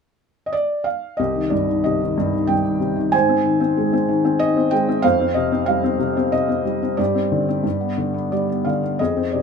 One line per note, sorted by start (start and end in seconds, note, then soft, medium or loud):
0.46 0.53 D#5 medium
0.53 0.86 D5 medium
0.84 1.19 F5 medium
1.17 3.10 C2 soft
1.17 2.14 G4 soft
1.17 1.52 D#5 medium
1.35 1.67 D#3 soft
1.50 2.16 G2 soft
1.50 1.81 D5 soft
1.69 1.99 D#3 soft
1.84 2.79 C3 soft
1.84 2.51 D#5 medium
2.01 2.32 D#3 soft
2.18 2.47 G2 soft
2.33 2.63 D#3 soft
2.47 3.11 G2 soft
2.47 3.14 G5 medium
2.65 2.95 D#3 soft
2.80 3.12 C3 soft
2.96 3.12 D#3 soft
3.12 5.00 G#2 soft
3.12 4.37 C5 medium
3.12 4.44 G#5 medium
3.29 3.59 C4 soft
3.44 4.07 D#3 soft
3.60 3.92 C4 soft
3.77 4.71 G#3 soft
3.93 4.23 C4 soft
4.09 4.40 D#3 medium
4.25 4.55 C4 soft
4.39 5.03 D#3 soft
4.39 4.73 D#5 medium
4.56 4.87 C4 soft
4.71 5.03 G#3 soft
4.71 5.05 G5 medium
4.88 5.04 C4 soft
5.02 6.95 F2 medium
5.02 5.96 C5 medium
5.02 5.37 F5 medium
5.20 5.51 C4 soft
5.34 5.98 C3 soft
5.34 5.65 D#5 medium
5.52 5.82 C4 soft
5.66 6.64 G3 soft
5.66 6.34 F5 medium
5.84 6.15 C4 soft
5.99 6.31 C3 medium
6.17 6.47 C4 soft
6.32 6.97 C3 soft
6.32 7.01 D#5 medium
6.49 6.81 C4 soft
6.65 6.98 G3 soft
6.82 6.99 C4 soft
6.97 7.62 G2 soft
6.97 8.28 G4 soft
6.97 8.30 D5 medium
7.15 7.47 C4 soft
7.32 7.64 D3 soft
7.49 7.64 C4 soft
7.64 8.95 G2 soft
7.81 8.12 B3 soft
7.98 8.65 D3 soft
8.14 8.48 B3 soft
8.32 8.98 G3 soft
8.32 8.67 D5 soft
8.49 8.82 B3 soft
8.65 8.99 D3 soft
8.65 9.00 F5 soft
8.83 9.00 B3 soft
8.99 9.42 F2 soft
8.99 9.42 G#4 soft
8.99 9.34 D#5 medium
9.17 9.42 C4 soft
9.32 9.42 C3 soft
9.32 9.42 D5 soft